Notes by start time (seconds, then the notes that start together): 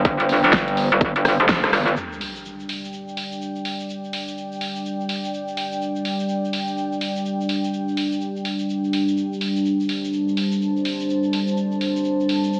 Already playing: G1 G3 D4 C5 G5
0.05 kick, closed hi-hat
0.20 G1, closed hi-hat
0.29 open hi-hat
0.44 G1, snare, closed hi-hat
0.53 kick, snare, closed hi-hat
0.68 closed hi-hat
0.77 open hi-hat
0.92 G1, closed hi-hat
1.01 kick, closed hi-hat
1.16 G1, closed hi-hat
1.25 cross-stick, open hi-hat
1.40 F1, closed hi-hat
1.49 kick, snare, closed hi-hat
1.64 cross-stick, closed hi-hat
1.73 G1, cross-stick, open hi-hat
1.88 closed hi-hat
1.97 G3 D4 D5 G5, sub drop, shaker
2.12 shaker
2.21 open hi-hat
2.36 shaker
2.45 shaker
2.60 shaker
2.69 open hi-hat
2.85 shaker
2.93 shaker
3.08 shaker
3.17 open hi-hat
3.32 shaker
3.42 shaker
3.56 shaker
3.65 open hi-hat
3.80 shaker
3.89 shaker
4.04 shaker
4.13 open hi-hat
4.28 shaker
4.38 shaker
4.52 shaker
4.61 open hi-hat
4.76 shaker
4.85 shaker
5.01 shaker
5.09 open hi-hat
5.25 shaker
5.34 shaker
5.48 shaker
5.57 open hi-hat
5.72 shaker
5.82 shaker
5.96 shaker
6.05 open hi-hat
6.20 shaker
6.29 shaker
6.45 shaker
6.53 open hi-hat
6.68 shaker
6.78 shaker
6.92 shaker
7.01 open hi-hat
7.16 shaker
7.25 shaker
7.41 shaker
7.49 open hi-hat
7.64 shaker
7.73 shaker
7.88 shaker
7.97 open hi-hat
8.12 shaker
8.21 shaker
8.36 shaker
8.45 open hi-hat
8.59 shaker
8.69 shaker
8.84 shaker
8.93 open hi-hat
9.08 shaker
9.17 shaker
9.33 shaker
9.41 open hi-hat
9.56 shaker
9.65 C5 A5, shaker
9.80 shaker
9.89 open hi-hat
10.05 shaker
10.13 shaker
10.28 shaker
10.37 open hi-hat
10.52 shaker
10.62 shaker
10.76 shaker
10.85 open hi-hat
11.00 shaker
11.09 shaker
11.23 shaker
11.33 open hi-hat
11.47 shaker
11.57 shaker
11.72 shaker
11.81 open hi-hat
11.96 shaker
12.04 shaker
12.20 shaker
12.29 open hi-hat
12.44 shaker
12.53 shaker